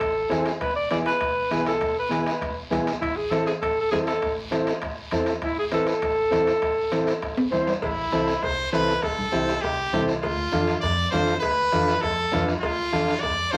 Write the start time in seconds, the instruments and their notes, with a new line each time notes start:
Already playing: alto saxophone A4
0.00 upright bass A1, bombo low, bombo rim, high conga, high timbale, long guiro
0.30 upright bass E2, transistor combo organ C4 E4 G#4, bombo rim, high conga, high timbale, short guiro
0.45 bombo rim, high timbale, short guiro
0.60 upright bass E1, alto saxophone B4, bombo low, bombo rim, high conga, high timbale, long guiro
0.76 alto saxophone D5
0.90 transistor combo organ B3 E4 G#4, alto saxophone D5, bombo rim, high conga, high timbale, short guiro
1.06 alto saxophone B4, bombo rim, high timbale, short guiro
1.21 upright bass E1, bombo low, bombo rim, high conga, high timbale, long guiro
1.51 upright bass B1, transistor combo organ B3 E4 G#4, bombo rim, high conga, high timbale, short guiro
1.66 alto saxophone A4, bombo rim, high timbale, short guiro
1.81 upright bass E1, bombo low, bombo rim, high conga, high timbale, long guiro
1.99 alto saxophone B4
2.09 transistor combo organ B3 E4 G#4, bombo rim, high conga, high timbale, short guiro
2.26 bombo rim, high timbale, short guiro
2.41 upright bass E1, bombo low, bombo rim, high conga, high timbale, long guiro
2.70 upright bass B1, transistor combo organ B3 E4 G#4, bombo low, bombo rim, high conga, high timbale, low timbale, short guiro
2.87 bombo rim, high timbale, short guiro
3.01 upright bass A1, alto saxophone E4, bombo low, bombo rim, high conga, high timbale, long guiro
3.16 alto saxophone G#4
3.31 transistor combo organ C4 E4 A4, alto saxophone A4, bombo rim, high conga, high timbale, short guiro
3.46 alto saxophone G#4, bombo rim, high timbale, short guiro
3.61 upright bass A1, alto saxophone A4, bombo low, bombo rim, high conga, high timbale, long guiro
3.81 alto saxophone A4
3.91 upright bass E2, transistor combo organ C4 E4 A4, alto saxophone G#4, bombo rim, high conga, high timbale, low timbale, short guiro
4.06 alto saxophone A4, bombo rim, high timbale, short guiro
4.22 upright bass A1, bombo low, bombo rim, high timbale, long guiro
4.51 transistor combo organ C4 E4 A4, bombo rim, high conga, high timbale, short guiro
4.67 bombo rim, high timbale, short guiro
4.82 upright bass A1, bombo low, bombo rim, high conga, high timbale, long guiro
5.11 upright bass E2, transistor combo organ C4 E4 A4, bombo rim, high conga, high timbale, short guiro
5.26 bombo rim, high timbale, short guiro
5.42 upright bass A1, alto saxophone E4, bombo low, bombo rim, high conga, high timbale, long guiro
5.59 alto saxophone G#4
5.72 transistor combo organ C4 E4 B4, alto saxophone A4, bombo rim, high conga, high timbale, short guiro
5.87 alto saxophone A4, bombo rim, high timbale, short guiro
6.02 upright bass A1, bombo low, bombo rim, high conga, high timbale, long guiro
6.31 upright bass E2, transistor combo organ C4 E4 A4, bombo low, bombo rim, high conga, high timbale, short guiro
6.47 bombo rim, high timbale, short guiro
6.62 upright bass A1, bombo low, bombo rim, high conga, high timbale, long guiro
6.92 transistor combo organ C4 E4 A4, bombo rim, high conga, high timbale, short guiro
7.07 bombo rim, high timbale, short guiro
7.22 upright bass A1, bombo low, bombo rim, high conga, high timbale, long guiro
7.38 high timbale
7.51 upright bass E2, transistor combo organ C4 E4 C5, bombo low, bombo rim, high conga, low timbale, short guiro
7.67 bombo rim, low timbale, short guiro
7.82 upright bass A1, trumpet E4, bombo low, bombo rim, cowbell, high conga, long guiro
8.12 upright bass C2, transistor combo organ C4 E4 A4, bombo rim, high conga, short guiro
8.27 bombo rim, short guiro
8.43 upright bass C2, trumpet C5, bombo low, bombo rim, cowbell, high conga, long guiro
8.72 upright bass C2, transistor combo organ C4 E4 A4, trumpet B4, bombo rim, high conga, short guiro
8.88 bombo rim, short guiro
9.03 upright bass A1, trumpet A4, bombo low, bombo rim, cowbell, high conga, long guiro
9.19 low conga
9.32 upright bass C2, transistor combo organ C4 E4 G4, bombo rim, high conga, short guiro
9.47 bombo rim, short guiro
9.61 upright bass C2, trumpet G4, bombo low, bombo rim, cowbell, high conga, long guiro
9.93 upright bass C2, transistor combo organ C4 E4 A4, bombo rim, high conga, low conga, short guiro
10.08 bombo rim, short guiro
10.21 upright bass D2, trumpet F4, bombo low, bombo rim, cowbell, high conga, long guiro
10.52 upright bass F2, transistor combo organ D4 F4 A4, bombo rim, high conga, short guiro
10.67 bombo rim, short guiro
10.80 upright bass F2, trumpet D5, bombo low, bombo rim, cowbell, long guiro
11.11 upright bass F2, transistor combo organ D4 F4 A4, trumpet C5, bombo rim, high conga, low timbale, short guiro
11.27 bombo rim, short guiro
11.40 upright bass D2, trumpet B4, bombo low, bombo rim, cowbell, long guiro
11.72 upright bass F2, transistor combo organ D4 F4 A4, bombo rim, high conga, short guiro
11.88 bombo rim, short guiro
12.01 upright bass F2, trumpet A4, bombo low, bombo rim, cowbell, long guiro
12.32 upright bass F2, transistor combo organ D4 F4 B4, bombo low, bombo rim, high conga, low conga, low timbale, short guiro
12.48 bombo rim, short guiro
12.60 upright bass D2, trumpet F4, bombo low, bombo rim, cowbell, high conga, long guiro
12.93 upright bass F2, transistor combo organ D4 F4 A4, bombo rim, high conga, short guiro
13.08 bombo rim, short guiro
13.20 upright bass F2, trumpet D5, bombo low, bombo rim, cowbell, high conga, long guiro
13.51 upright bass F2, transistor combo organ D4 F4 A4, trumpet C5, bombo low, bombo rim, high conga, short guiro